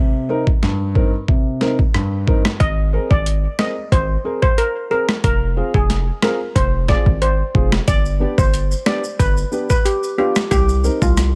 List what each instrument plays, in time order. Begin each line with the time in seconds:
Already playing: grand piano C3
0.29 grand piano C4 D#4 A#4
0.47 kick
0.63 grand piano G2, snare
0.95 grand piano C4 D#4 A#4, kick
1.28 grand piano C3, kick
1.61 grand piano C4 D#4 A#4, snare
1.79 kick
1.94 grand piano G2, cross-stick
2.27 grand piano C4 D#4 A#4, kick
2.45 cross-stick, snare
2.60 808-style bass G#1, steel pan D#5, kick, closed hi-hat
2.93 grand piano C4 G#4 A#4
3.11 808-style bass G#1, steel pan D5, kick
3.26 closed hi-hat
3.59 grand piano C4 G#4 A#4, steel pan D#5, cross-stick, snare
3.92 808-style bass G#1, steel pan C5, kick, closed hi-hat
4.24 grand piano C4 G#4 A#4
4.42 steel pan C5, kick
4.58 steel pan A#4, closed hi-hat
4.90 grand piano C4 G#4 A#4, steel pan A#4
5.09 cross-stick, snare
5.24 808-style bass F1, steel pan A#4, kick, closed hi-hat
5.56 grand piano C4 F4 G#4
5.74 808-style bass F1, steel pan G#4, kick
5.90 snare, closed hi-hat
6.22 grand piano C4 F4 G#4, steel pan A#4, cross-stick, snare
6.56 808-style bass F1, steel pan C5, kick, closed hi-hat
6.88 grand piano C4 F4 G#4, steel pan D5, kick, snare
7.06 808-style bass G#1, kick
7.22 steel pan C5, closed hi-hat
7.54 808-style bass F1, grand piano C4 F4 G#4, kick
7.72 cross-stick, snare
7.88 808-style bass G1, steel pan D5, kick, closed hi-hat, maracas
8.06 maracas
8.20 grand piano B3 D4 G4
8.38 808-style bass G1, steel pan C5, kick, maracas
8.54 closed hi-hat, maracas
8.72 maracas
8.86 grand piano B3 D4 G4, steel pan D5, cross-stick, snare
9.04 maracas
9.19 808-style bass G1, steel pan B4, kick, closed hi-hat, maracas
9.37 maracas
9.52 grand piano B3 D4 G4, maracas
9.70 steel pan B4, kick, maracas
9.85 steel pan G4, closed hi-hat, maracas
10.03 maracas
10.18 grand piano B3 D4 F4, steel pan G4
10.36 cross-stick, snare, maracas
10.51 808-style bass C2, steel pan G4, kick, closed hi-hat, maracas
10.69 maracas
10.84 grand piano C4 D#4 A#4, maracas
11.02 808-style bass C2, steel pan F4, kick, maracas
11.17 cross-stick, snare, closed hi-hat, maracas